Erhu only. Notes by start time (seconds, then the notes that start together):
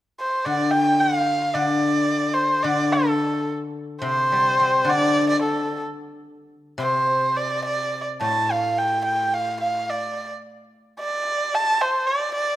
0.20 C5
0.45 D5
0.71 G5
1.00 F5
1.54 D5
2.34 C5
2.63 D5
2.92 A4
4.02 C5
4.90 D5
5.29 D5
5.42 A4
6.80 C5
7.37 D5
7.65 D5
8.22 A5
8.51 F5
8.78 G5
9.05 G5
9.34 F5
9.60 F5
9.90 D5
11.00 D5
11.55 A5
11.81 C5
12.07 D5
12.35 D5